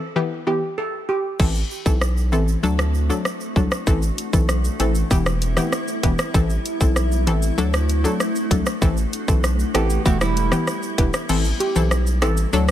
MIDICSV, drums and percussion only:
0, 0, Header, 1, 2, 480
1, 0, Start_track
1, 0, Tempo, 618557
1, 1083, Time_signature, 4, 2, 24, 8
1, 9866, End_track
2, 0, Start_track
2, 0, Title_t, "Drums"
2, 1083, Note_on_c, 9, 36, 113
2, 1083, Note_on_c, 9, 49, 92
2, 1085, Note_on_c, 9, 82, 67
2, 1161, Note_off_c, 9, 36, 0
2, 1161, Note_off_c, 9, 49, 0
2, 1162, Note_off_c, 9, 82, 0
2, 1201, Note_on_c, 9, 82, 53
2, 1279, Note_off_c, 9, 82, 0
2, 1326, Note_on_c, 9, 82, 47
2, 1403, Note_off_c, 9, 82, 0
2, 1443, Note_on_c, 9, 36, 87
2, 1444, Note_on_c, 9, 82, 70
2, 1520, Note_off_c, 9, 36, 0
2, 1522, Note_off_c, 9, 82, 0
2, 1563, Note_on_c, 9, 37, 90
2, 1564, Note_on_c, 9, 82, 64
2, 1641, Note_off_c, 9, 37, 0
2, 1642, Note_off_c, 9, 82, 0
2, 1686, Note_on_c, 9, 82, 53
2, 1763, Note_off_c, 9, 82, 0
2, 1803, Note_on_c, 9, 82, 55
2, 1881, Note_off_c, 9, 82, 0
2, 1925, Note_on_c, 9, 82, 59
2, 2002, Note_off_c, 9, 82, 0
2, 2045, Note_on_c, 9, 82, 69
2, 2123, Note_off_c, 9, 82, 0
2, 2164, Note_on_c, 9, 37, 96
2, 2166, Note_on_c, 9, 82, 54
2, 2242, Note_off_c, 9, 37, 0
2, 2243, Note_off_c, 9, 82, 0
2, 2284, Note_on_c, 9, 82, 51
2, 2361, Note_off_c, 9, 82, 0
2, 2406, Note_on_c, 9, 82, 70
2, 2484, Note_off_c, 9, 82, 0
2, 2524, Note_on_c, 9, 37, 86
2, 2526, Note_on_c, 9, 82, 68
2, 2601, Note_off_c, 9, 37, 0
2, 2604, Note_off_c, 9, 82, 0
2, 2643, Note_on_c, 9, 82, 46
2, 2720, Note_off_c, 9, 82, 0
2, 2763, Note_on_c, 9, 36, 86
2, 2764, Note_on_c, 9, 82, 48
2, 2841, Note_off_c, 9, 36, 0
2, 2842, Note_off_c, 9, 82, 0
2, 2882, Note_on_c, 9, 82, 73
2, 2884, Note_on_c, 9, 37, 93
2, 2960, Note_off_c, 9, 82, 0
2, 2962, Note_off_c, 9, 37, 0
2, 3003, Note_on_c, 9, 36, 110
2, 3003, Note_on_c, 9, 82, 83
2, 3004, Note_off_c, 9, 82, 0
2, 3004, Note_on_c, 9, 82, 65
2, 3081, Note_off_c, 9, 36, 0
2, 3081, Note_off_c, 9, 82, 0
2, 3121, Note_on_c, 9, 82, 51
2, 3124, Note_off_c, 9, 82, 0
2, 3124, Note_on_c, 9, 82, 53
2, 3202, Note_off_c, 9, 82, 0
2, 3245, Note_on_c, 9, 42, 71
2, 3245, Note_on_c, 9, 82, 51
2, 3246, Note_off_c, 9, 82, 0
2, 3246, Note_on_c, 9, 82, 48
2, 3323, Note_off_c, 9, 42, 0
2, 3324, Note_off_c, 9, 82, 0
2, 3362, Note_on_c, 9, 82, 76
2, 3363, Note_on_c, 9, 36, 90
2, 3365, Note_off_c, 9, 82, 0
2, 3365, Note_on_c, 9, 82, 71
2, 3440, Note_off_c, 9, 36, 0
2, 3442, Note_off_c, 9, 82, 0
2, 3483, Note_on_c, 9, 37, 91
2, 3484, Note_on_c, 9, 82, 68
2, 3485, Note_off_c, 9, 82, 0
2, 3485, Note_on_c, 9, 82, 73
2, 3560, Note_off_c, 9, 37, 0
2, 3562, Note_off_c, 9, 82, 0
2, 3603, Note_on_c, 9, 82, 53
2, 3606, Note_off_c, 9, 82, 0
2, 3606, Note_on_c, 9, 82, 54
2, 3684, Note_off_c, 9, 82, 0
2, 3723, Note_on_c, 9, 42, 71
2, 3723, Note_on_c, 9, 82, 54
2, 3724, Note_off_c, 9, 82, 0
2, 3724, Note_on_c, 9, 82, 56
2, 3801, Note_off_c, 9, 42, 0
2, 3802, Note_off_c, 9, 82, 0
2, 3840, Note_on_c, 9, 82, 81
2, 3845, Note_off_c, 9, 82, 0
2, 3845, Note_on_c, 9, 82, 63
2, 3922, Note_off_c, 9, 82, 0
2, 3963, Note_on_c, 9, 82, 70
2, 3964, Note_on_c, 9, 36, 86
2, 3966, Note_off_c, 9, 82, 0
2, 3966, Note_on_c, 9, 82, 75
2, 4042, Note_off_c, 9, 36, 0
2, 4044, Note_off_c, 9, 82, 0
2, 4082, Note_on_c, 9, 82, 56
2, 4084, Note_on_c, 9, 37, 95
2, 4086, Note_off_c, 9, 82, 0
2, 4086, Note_on_c, 9, 82, 57
2, 4162, Note_off_c, 9, 37, 0
2, 4163, Note_off_c, 9, 82, 0
2, 4203, Note_on_c, 9, 82, 51
2, 4205, Note_off_c, 9, 82, 0
2, 4205, Note_on_c, 9, 42, 69
2, 4205, Note_on_c, 9, 82, 50
2, 4282, Note_off_c, 9, 42, 0
2, 4282, Note_off_c, 9, 82, 0
2, 4320, Note_on_c, 9, 37, 92
2, 4323, Note_on_c, 9, 82, 71
2, 4325, Note_off_c, 9, 82, 0
2, 4325, Note_on_c, 9, 82, 71
2, 4398, Note_off_c, 9, 37, 0
2, 4403, Note_off_c, 9, 82, 0
2, 4442, Note_on_c, 9, 37, 92
2, 4443, Note_on_c, 9, 82, 73
2, 4445, Note_off_c, 9, 82, 0
2, 4445, Note_on_c, 9, 82, 66
2, 4520, Note_off_c, 9, 37, 0
2, 4522, Note_off_c, 9, 82, 0
2, 4562, Note_on_c, 9, 82, 48
2, 4640, Note_off_c, 9, 82, 0
2, 4682, Note_on_c, 9, 36, 92
2, 4683, Note_on_c, 9, 42, 78
2, 4683, Note_on_c, 9, 82, 52
2, 4684, Note_off_c, 9, 82, 0
2, 4684, Note_on_c, 9, 65, 67
2, 4684, Note_on_c, 9, 82, 49
2, 4760, Note_off_c, 9, 36, 0
2, 4761, Note_off_c, 9, 42, 0
2, 4761, Note_off_c, 9, 65, 0
2, 4761, Note_off_c, 9, 82, 0
2, 4801, Note_on_c, 9, 82, 74
2, 4803, Note_on_c, 9, 37, 97
2, 4879, Note_off_c, 9, 82, 0
2, 4881, Note_off_c, 9, 37, 0
2, 4923, Note_on_c, 9, 36, 114
2, 4923, Note_on_c, 9, 82, 84
2, 4924, Note_off_c, 9, 82, 0
2, 4924, Note_on_c, 9, 82, 68
2, 5001, Note_off_c, 9, 36, 0
2, 5001, Note_off_c, 9, 82, 0
2, 5040, Note_on_c, 9, 82, 51
2, 5043, Note_off_c, 9, 82, 0
2, 5043, Note_on_c, 9, 82, 53
2, 5121, Note_off_c, 9, 82, 0
2, 5165, Note_on_c, 9, 42, 74
2, 5165, Note_on_c, 9, 82, 52
2, 5166, Note_off_c, 9, 82, 0
2, 5166, Note_on_c, 9, 82, 50
2, 5242, Note_off_c, 9, 42, 0
2, 5243, Note_off_c, 9, 82, 0
2, 5282, Note_on_c, 9, 36, 91
2, 5282, Note_on_c, 9, 82, 77
2, 5284, Note_off_c, 9, 82, 0
2, 5284, Note_on_c, 9, 82, 69
2, 5360, Note_off_c, 9, 36, 0
2, 5362, Note_off_c, 9, 82, 0
2, 5402, Note_on_c, 9, 37, 87
2, 5404, Note_on_c, 9, 82, 74
2, 5480, Note_off_c, 9, 37, 0
2, 5482, Note_off_c, 9, 82, 0
2, 5523, Note_on_c, 9, 82, 53
2, 5526, Note_off_c, 9, 82, 0
2, 5526, Note_on_c, 9, 82, 57
2, 5603, Note_off_c, 9, 82, 0
2, 5643, Note_on_c, 9, 42, 75
2, 5643, Note_on_c, 9, 82, 54
2, 5721, Note_off_c, 9, 42, 0
2, 5721, Note_off_c, 9, 82, 0
2, 5761, Note_on_c, 9, 82, 83
2, 5763, Note_off_c, 9, 82, 0
2, 5763, Note_on_c, 9, 82, 59
2, 5841, Note_off_c, 9, 82, 0
2, 5884, Note_on_c, 9, 82, 67
2, 5885, Note_off_c, 9, 82, 0
2, 5885, Note_on_c, 9, 82, 74
2, 5962, Note_off_c, 9, 82, 0
2, 6003, Note_on_c, 9, 82, 58
2, 6004, Note_off_c, 9, 82, 0
2, 6004, Note_on_c, 9, 82, 56
2, 6005, Note_on_c, 9, 37, 99
2, 6082, Note_off_c, 9, 37, 0
2, 6082, Note_off_c, 9, 82, 0
2, 6122, Note_on_c, 9, 82, 53
2, 6127, Note_off_c, 9, 82, 0
2, 6127, Note_on_c, 9, 42, 67
2, 6127, Note_on_c, 9, 82, 47
2, 6204, Note_off_c, 9, 42, 0
2, 6204, Note_off_c, 9, 82, 0
2, 6245, Note_on_c, 9, 82, 71
2, 6246, Note_off_c, 9, 82, 0
2, 6246, Note_on_c, 9, 82, 72
2, 6323, Note_off_c, 9, 82, 0
2, 6365, Note_on_c, 9, 37, 89
2, 6365, Note_on_c, 9, 82, 76
2, 6443, Note_off_c, 9, 37, 0
2, 6443, Note_off_c, 9, 82, 0
2, 6481, Note_on_c, 9, 82, 51
2, 6484, Note_off_c, 9, 82, 0
2, 6484, Note_on_c, 9, 82, 55
2, 6562, Note_off_c, 9, 82, 0
2, 6603, Note_on_c, 9, 36, 92
2, 6603, Note_on_c, 9, 82, 49
2, 6606, Note_off_c, 9, 82, 0
2, 6606, Note_on_c, 9, 42, 79
2, 6606, Note_on_c, 9, 82, 55
2, 6681, Note_off_c, 9, 36, 0
2, 6683, Note_off_c, 9, 42, 0
2, 6683, Note_off_c, 9, 82, 0
2, 6721, Note_on_c, 9, 82, 74
2, 6722, Note_off_c, 9, 82, 0
2, 6722, Note_on_c, 9, 82, 79
2, 6725, Note_on_c, 9, 37, 93
2, 6800, Note_off_c, 9, 82, 0
2, 6802, Note_off_c, 9, 37, 0
2, 6844, Note_on_c, 9, 36, 117
2, 6844, Note_on_c, 9, 82, 82
2, 6921, Note_off_c, 9, 36, 0
2, 6922, Note_off_c, 9, 82, 0
2, 6960, Note_on_c, 9, 82, 51
2, 6966, Note_off_c, 9, 82, 0
2, 6966, Note_on_c, 9, 82, 54
2, 7044, Note_off_c, 9, 82, 0
2, 7085, Note_on_c, 9, 82, 50
2, 7087, Note_off_c, 9, 82, 0
2, 7087, Note_on_c, 9, 42, 73
2, 7087, Note_on_c, 9, 82, 52
2, 7164, Note_off_c, 9, 42, 0
2, 7164, Note_off_c, 9, 82, 0
2, 7203, Note_on_c, 9, 36, 92
2, 7203, Note_on_c, 9, 82, 73
2, 7205, Note_off_c, 9, 82, 0
2, 7205, Note_on_c, 9, 82, 75
2, 7281, Note_off_c, 9, 36, 0
2, 7282, Note_off_c, 9, 82, 0
2, 7323, Note_on_c, 9, 82, 69
2, 7324, Note_on_c, 9, 37, 92
2, 7326, Note_off_c, 9, 82, 0
2, 7326, Note_on_c, 9, 82, 73
2, 7402, Note_off_c, 9, 37, 0
2, 7404, Note_off_c, 9, 82, 0
2, 7445, Note_on_c, 9, 82, 57
2, 7523, Note_off_c, 9, 82, 0
2, 7563, Note_on_c, 9, 37, 97
2, 7564, Note_on_c, 9, 42, 76
2, 7564, Note_on_c, 9, 82, 56
2, 7641, Note_off_c, 9, 37, 0
2, 7642, Note_off_c, 9, 42, 0
2, 7642, Note_off_c, 9, 82, 0
2, 7681, Note_on_c, 9, 82, 81
2, 7684, Note_off_c, 9, 82, 0
2, 7684, Note_on_c, 9, 82, 62
2, 7761, Note_off_c, 9, 82, 0
2, 7804, Note_on_c, 9, 36, 91
2, 7804, Note_on_c, 9, 82, 70
2, 7805, Note_off_c, 9, 82, 0
2, 7805, Note_on_c, 9, 82, 71
2, 7882, Note_off_c, 9, 36, 0
2, 7883, Note_off_c, 9, 82, 0
2, 7923, Note_on_c, 9, 82, 58
2, 7924, Note_off_c, 9, 82, 0
2, 7924, Note_on_c, 9, 82, 55
2, 7925, Note_on_c, 9, 37, 97
2, 8002, Note_off_c, 9, 37, 0
2, 8002, Note_off_c, 9, 82, 0
2, 8043, Note_on_c, 9, 82, 52
2, 8046, Note_off_c, 9, 82, 0
2, 8046, Note_on_c, 9, 42, 71
2, 8046, Note_on_c, 9, 82, 50
2, 8124, Note_off_c, 9, 42, 0
2, 8124, Note_off_c, 9, 82, 0
2, 8161, Note_on_c, 9, 37, 90
2, 8164, Note_on_c, 9, 82, 73
2, 8166, Note_off_c, 9, 82, 0
2, 8166, Note_on_c, 9, 82, 73
2, 8239, Note_off_c, 9, 37, 0
2, 8243, Note_off_c, 9, 82, 0
2, 8283, Note_on_c, 9, 37, 86
2, 8284, Note_on_c, 9, 82, 75
2, 8285, Note_off_c, 9, 82, 0
2, 8285, Note_on_c, 9, 82, 70
2, 8361, Note_off_c, 9, 37, 0
2, 8363, Note_off_c, 9, 82, 0
2, 8402, Note_on_c, 9, 82, 47
2, 8480, Note_off_c, 9, 82, 0
2, 8522, Note_on_c, 9, 36, 95
2, 8524, Note_on_c, 9, 42, 78
2, 8524, Note_on_c, 9, 65, 70
2, 8524, Note_on_c, 9, 82, 48
2, 8600, Note_off_c, 9, 36, 0
2, 8601, Note_off_c, 9, 42, 0
2, 8601, Note_off_c, 9, 65, 0
2, 8601, Note_off_c, 9, 82, 0
2, 8641, Note_on_c, 9, 82, 79
2, 8644, Note_on_c, 9, 37, 93
2, 8719, Note_off_c, 9, 82, 0
2, 8722, Note_off_c, 9, 37, 0
2, 8763, Note_on_c, 9, 49, 98
2, 8763, Note_on_c, 9, 82, 86
2, 8764, Note_off_c, 9, 82, 0
2, 8764, Note_on_c, 9, 82, 70
2, 8841, Note_off_c, 9, 49, 0
2, 8842, Note_off_c, 9, 82, 0
2, 8881, Note_on_c, 9, 82, 53
2, 8885, Note_off_c, 9, 82, 0
2, 8885, Note_on_c, 9, 82, 54
2, 8962, Note_off_c, 9, 82, 0
2, 9005, Note_on_c, 9, 42, 75
2, 9005, Note_on_c, 9, 82, 52
2, 9083, Note_off_c, 9, 42, 0
2, 9083, Note_off_c, 9, 82, 0
2, 9123, Note_on_c, 9, 82, 79
2, 9124, Note_off_c, 9, 82, 0
2, 9124, Note_on_c, 9, 82, 75
2, 9201, Note_off_c, 9, 82, 0
2, 9244, Note_on_c, 9, 37, 93
2, 9244, Note_on_c, 9, 82, 68
2, 9245, Note_off_c, 9, 82, 0
2, 9245, Note_on_c, 9, 82, 75
2, 9321, Note_off_c, 9, 37, 0
2, 9323, Note_off_c, 9, 82, 0
2, 9364, Note_on_c, 9, 82, 55
2, 9366, Note_off_c, 9, 82, 0
2, 9366, Note_on_c, 9, 82, 55
2, 9443, Note_off_c, 9, 82, 0
2, 9482, Note_on_c, 9, 37, 97
2, 9483, Note_on_c, 9, 42, 78
2, 9483, Note_on_c, 9, 82, 56
2, 9560, Note_off_c, 9, 37, 0
2, 9561, Note_off_c, 9, 42, 0
2, 9561, Note_off_c, 9, 82, 0
2, 9600, Note_on_c, 9, 82, 85
2, 9603, Note_off_c, 9, 82, 0
2, 9603, Note_on_c, 9, 82, 61
2, 9681, Note_off_c, 9, 82, 0
2, 9723, Note_on_c, 9, 82, 69
2, 9725, Note_off_c, 9, 82, 0
2, 9725, Note_on_c, 9, 82, 77
2, 9802, Note_off_c, 9, 82, 0
2, 9842, Note_on_c, 9, 82, 56
2, 9866, Note_off_c, 9, 82, 0
2, 9866, End_track
0, 0, End_of_file